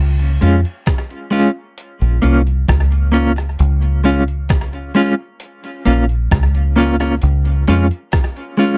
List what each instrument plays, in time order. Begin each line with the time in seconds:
Already playing: fingered electric bass C#2
0.19 closed hi-hat
0.41 fingered electric bass F2, clean electric guitar G#3 C#4 F4, closed hi-hat
0.65 closed hi-hat
0.86 kick, cross-stick, closed hi-hat
1.11 closed hi-hat
1.31 clean electric guitar G#3 C#4 F4, closed hi-hat
1.78 closed hi-hat
2.01 fingered electric bass A#1, closed hi-hat
2.22 fingered electric bass C2, clean electric guitar A#3 C#4 F4, closed hi-hat
2.47 closed hi-hat
2.69 fingered electric bass C#2, kick, cross-stick, closed hi-hat
2.92 closed hi-hat
3.12 clean electric guitar A#3 C#4 F4, closed hi-hat
3.36 muted clean electric guitar stroke, cross-stick, closed hi-hat
3.59 fingered electric bass C#2, closed hi-hat
3.82 closed hi-hat
4.04 clean electric guitar G#3 C#4 F4, closed hi-hat
4.28 closed hi-hat
4.49 kick, cross-stick, closed hi-hat
4.73 closed hi-hat
4.95 clean electric guitar G#3 C#4 F4, closed hi-hat
5.40 closed hi-hat
5.64 closed hi-hat
5.85 fingered electric bass A#1, clean electric guitar A#3 C#4 F4, closed hi-hat
6.09 closed hi-hat
6.31 fingered electric bass C#2, kick, cross-stick, closed hi-hat
6.55 closed hi-hat
6.76 clean electric guitar A#3 C#4 F4, closed hi-hat
7.00 clean electric guitar A#3 C#4 F4, cross-stick, closed hi-hat
7.22 fingered electric bass C#2, closed hi-hat
7.45 closed hi-hat
7.67 fingered electric bass F2, clean electric guitar G#3 C#4 F4, closed hi-hat
7.91 closed hi-hat
8.12 kick, cross-stick, closed hi-hat
8.36 closed hi-hat
8.57 clean electric guitar G#3 C#4 F4, closed hi-hat